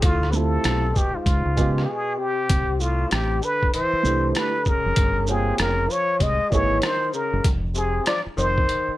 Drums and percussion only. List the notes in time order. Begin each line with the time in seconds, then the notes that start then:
0.02 kick, closed hi-hat
0.23 cross-stick
0.33 shaker
0.64 cross-stick, closed hi-hat
0.96 kick, shaker
1.26 kick, closed hi-hat
1.58 kick, closed hi-hat, shaker
1.78 cross-stick
2.50 kick, closed hi-hat
2.80 shaker
3.11 cross-stick, closed hi-hat
3.42 shaker
3.63 kick
3.74 closed hi-hat
4.05 shaker
4.35 cross-stick, closed hi-hat
4.65 kick, shaker
4.96 kick, closed hi-hat
5.27 shaker
5.58 cross-stick, closed hi-hat
5.90 shaker
6.20 kick, closed hi-hat
6.52 kick, shaker
6.82 cross-stick, closed hi-hat
7.13 shaker
7.44 kick, closed hi-hat
7.75 shaker
8.06 cross-stick, closed hi-hat
8.38 shaker
8.58 kick
8.69 closed hi-hat